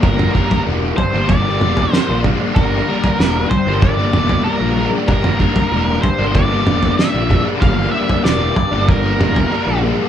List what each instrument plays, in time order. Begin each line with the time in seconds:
0.02 picked electric bass G1, overdriven electric guitar G2 D3 G3 A#3 D4, lead electric guitar A#4, kick, floor tom
0.18 overdriven electric guitar G3 A#3 D4, mid tom
0.34 overdriven electric guitar D3 G3 A#3 D4, kick
0.51 floor tom
0.64 picked electric bass E1, overdriven electric guitar G2 D3 G3 A#3 D4
0.96 lead electric guitar C5, muted overdriven electric guitar stroke, floor tom
1.13 picked electric bass G1, overdriven electric guitar G3 A#3 D4
1.27 lead electric guitar D5, kick, floor tom
1.45 overdriven electric guitar G3 A#3 D4
1.61 picked electric bass E1, overdriven electric guitar D3 G3 A#3 D4, mid tom
1.77 floor tom
1.92 overdriven electric guitar G2 D3 G3 A#3 D4, lead electric guitar C5, snare
2.08 picked electric bass A#1, overdriven electric guitar G3 A#3 D4
2.24 overdriven electric guitar D3 G3 A#3 D4, kick, mid tom
2.40 overdriven electric guitar G3 A#3 D4
2.55 picked electric bass G1, overdriven electric guitar G2 D3 G3 A#3 D4, lead electric guitar A#4, kick, floor tom
2.73 overdriven electric guitar G3 A#3 D4
2.88 overdriven electric guitar D3 G3 A#3 D4
3.04 floor tom
3.19 picked electric bass E1, overdriven electric guitar G2 D3 G3 A#3 D4, snare
3.50 lead electric guitar C5, muted overdriven electric guitar stroke, floor tom
3.67 picked electric bass G1, overdriven electric guitar G3 A#3 D4
3.82 lead electric guitar D5, kick, floor tom
3.99 overdriven electric guitar G3 A#3 D4
4.13 picked electric bass E1, overdriven electric guitar D3 G3 A#3 D4, mid tom
4.29 floor tom
4.44 overdriven electric guitar G2 D3 G3 A#3 D4, lead electric guitar A#4
4.61 picked electric bass A#1, overdriven electric guitar G3 A#3 D4
4.76 overdriven electric guitar D3 G3 A#3 D4
4.93 overdriven electric guitar G3 A#3 D4
5.08 picked electric bass G1, overdriven electric guitar G2 D3 G3 A#3 D4, lead electric guitar A#4, kick, floor tom
5.24 overdriven electric guitar G3 A#3 D4, mid tom
5.40 overdriven electric guitar D3 G3 A#3 D4, kick
5.56 floor tom
5.71 picked electric bass E1, overdriven electric guitar G2 D3 G3 A#3 D4
6.02 lead electric guitar C5, muted overdriven electric guitar stroke, floor tom
6.19 picked electric bass G1, overdriven electric guitar G3 A#3 D4
6.35 lead electric guitar D5, kick, floor tom
6.51 overdriven electric guitar G3 A#3 D4
6.67 picked electric bass E1, overdriven electric guitar D3 G3 A#3 D4, mid tom
6.83 floor tom
6.98 overdriven electric guitar G2 D3 G3 A#3 D4, lead electric guitar E5, snare
7.13 picked electric bass A#1, overdriven electric guitar G3 A#3 D4
7.29 overdriven electric guitar D3 G3 A#3 D4, kick, mid tom
7.45 overdriven electric guitar G3 A#3 D4
7.60 picked electric bass G1, overdriven electric guitar G2 D3 G3 A#3 D4, lead electric guitar F5, kick, floor tom
7.77 overdriven electric guitar G3 A#3 D4
7.91 overdriven electric guitar D3 G3 A#3 D4, lead electric guitar E5
8.09 floor tom
8.24 picked electric bass E1, overdriven electric guitar G2 D3 G3 A#3 D4, lead electric guitar D5, snare
8.56 muted overdriven electric guitar stroke, floor tom
8.71 picked electric bass G1, overdriven electric guitar G3 A#3 D4
8.88 lead electric guitar A#4, kick, floor tom
9.03 overdriven electric guitar G3 A#3 D4
9.18 picked electric bass E1, overdriven electric guitar D3 G3 A#3 D4, mid tom
9.36 floor tom
9.50 overdriven electric guitar G2 D3 G3 A#3 D4
9.67 picked electric bass A#1, overdriven electric guitar G3 A#3 D4
9.82 overdriven electric guitar D3 G3 A#3 D4
9.97 overdriven electric guitar G3 A#3 D4